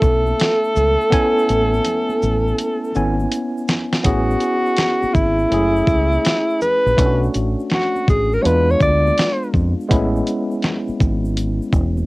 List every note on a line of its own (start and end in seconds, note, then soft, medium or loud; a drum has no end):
0.00 0.32 B1 medium
0.00 3.28 A3 medium
0.00 1.08 B3 medium
0.00 1.08 C#4 medium
0.00 1.09 E4 medium
0.00 3.29 A4 loud
0.00 1.12 G#5 medium
0.00 kick medium
0.00 shaker medium
0.00 shaker soft
0.26 high conga medium
0.26 shaker soft
0.39 snare loud
0.39 closed hi-hat medium
0.39 shaker medium
0.64 shaker soft
0.76 0.95 C#2 medium
0.76 low conga medium
0.76 shaker soft
0.76 shaker medium
1.01 shaker medium
1.10 2.91 B3 medium
1.10 2.91 C#4 medium
1.10 2.92 E4 medium
1.10 2.92 G#5 medium
1.10 kick loud
1.10 closed hi-hat medium
1.10 shaker medium
1.38 shaker soft
1.49 1.78 A1 medium
1.49 closed hi-hat soft
1.49 high conga soft
1.49 shaker soft
1.74 high conga medium
1.74 shaker soft
1.85 closed hi-hat medium
1.85 low conga medium
1.85 shaker medium
2.09 high conga medium
2.09 shaker soft
2.22 2.52 A1 medium
2.22 low conga medium
2.22 shaker medium
2.22 shaker soft
2.48 shaker soft
2.59 closed hi-hat medium
2.59 high conga soft
2.59 shaker medium
2.84 shaker soft
2.95 3.25 G#1 medium
2.95 4.02 B3 medium
2.95 4.03 C#4 medium
2.95 4.04 E4 medium
2.95 4.06 G#5 medium
2.95 shaker soft
2.95 shaker medium
3.20 high conga medium
3.20 shaker soft
3.32 closed hi-hat medium
3.32 shaker medium
3.57 shaker soft
3.68 snare loud
3.68 low conga medium
3.68 shaker medium
3.68 shaker soft
3.93 snare medium
3.93 shaker medium
4.03 4.34 A1 loud
4.03 5.48 B3 medium
4.03 5.48 C#4 medium
4.03 5.49 E4 medium
4.03 5.15 F#4 medium
4.03 5.49 G#4 medium
4.03 kick loud
4.03 closed hi-hat medium
4.03 shaker medium
4.31 shaker soft
4.40 closed hi-hat soft
4.40 shaker soft
4.42 shaker soft
4.66 shaker soft
4.77 snare loud
4.77 closed hi-hat medium
4.77 low conga medium
4.77 shaker medium
5.02 muted fingered electric bass stroke soft
5.02 high conga medium
5.02 shaker soft
5.14 5.44 G#1 medium
5.14 6.61 E4 medium
5.14 kick medium
5.14 low conga medium
5.14 shaker soft
5.14 shaker medium
5.39 shaker soft
5.50 5.81 F#1 medium
5.50 6.94 A3 medium
5.50 6.95 C#4 medium
5.50 6.95 E4 medium
5.50 6.96 G#4 medium
5.50 closed hi-hat medium
5.50 high conga soft
5.50 shaker medium
5.76 shaker soft
5.87 6.17 C#2 medium
5.87 kick medium
5.87 shaker medium
5.87 shaker soft
6.12 high conga medium
6.12 shaker soft
6.25 snare loud
6.25 closed hi-hat medium
6.25 shaker medium
6.50 shaker soft
6.61 7.31 B4 loud
6.61 low conga medium
6.61 shaker medium
6.61 shaker soft
6.86 6.96 A#1 medium
6.86 shaker medium
6.96 7.27 B1 loud
6.96 8.41 A3 medium
6.96 8.41 C#4 medium
6.96 8.41 D4 medium
6.96 7.07 E4 medium
6.96 kick loud
6.96 closed hi-hat medium
6.96 shaker medium
7.06 8.45 F#4 medium
7.23 shaker soft
7.34 7.54 A1 medium
7.34 closed hi-hat soft
7.34 shaker soft
7.60 shaker soft
7.70 snare loud
7.70 closed hi-hat medium
7.70 low conga medium
7.70 shaker medium
7.75 8.07 F#4 medium
7.96 high conga medium
7.96 shaker soft
8.08 8.37 A1 medium
8.08 8.35 G#4 medium
8.08 kick medium
8.08 low conga medium
8.08 shaker soft
8.32 8.44 A#4 medium
8.32 shaker soft
8.42 8.74 E2 loud
8.42 9.87 G#3 medium
8.42 9.87 B3 medium
8.42 9.87 D4 medium
8.42 9.88 F4 medium
8.42 8.72 B4 loud
8.42 8.47 C#5 medium
8.42 closed hi-hat medium
8.42 high conga soft
8.42 shaker medium
8.70 8.82 C#5 medium
8.70 shaker soft
8.80 9.10 D2 medium
8.80 9.51 D5 loud
8.80 kick medium
8.80 shaker soft
8.80 shaker medium
9.07 high conga medium
9.07 shaker soft
9.18 snare loud
9.18 closed hi-hat medium
9.18 shaker medium
9.43 shaker soft
9.54 9.73 F2 medium
9.54 kick medium
9.54 low conga medium
9.54 shaker medium
9.54 shaker soft
9.81 shaker medium
9.89 10.20 A1 loud
9.89 12.06 G#3 medium
9.89 12.06 B3 medium
9.89 12.06 C#4 medium
9.89 12.06 E4 medium
9.89 kick loud
9.89 closed hi-hat medium
9.89 shaker medium
10.16 shaker soft
10.27 closed hi-hat soft
10.27 shaker soft
10.51 shaker soft
10.62 snare loud
10.62 closed hi-hat medium
10.62 low conga medium
10.62 shaker medium
10.88 muted fingered electric bass stroke soft
10.88 high conga medium
10.88 shaker soft
11.00 11.59 G#1 medium
11.00 kick medium
11.00 low conga medium
11.00 shaker soft
11.25 shaker soft
11.37 closed hi-hat medium
11.37 high conga soft
11.37 shaker medium
11.62 shaker soft
11.73 12.02 E1 medium
11.73 kick medium
11.73 shaker soft
11.73 shaker medium
11.97 high conga medium
11.97 shaker soft